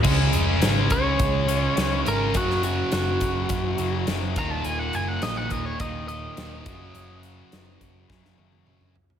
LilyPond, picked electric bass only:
\new Staff \with { instrumentName = "Picked electric bass" } { \clef bass \time 4/4 \key des \mixolydian \tempo 4 = 105 des,8 f,,8 aes,,8 des,8 des,4 des,8 aes,,8 | ges,,4 ges,,8 ges,,8 ges,,8 ges,,8 ges,,8 ees,,8 | ees,,8 ges,,8 bes,,8 ees,,8 ees,,4 ees,,8 ges,,8 | ges,,4 ges,,8 ges,,8 ges,,8 ges,,8 ges,,4 | }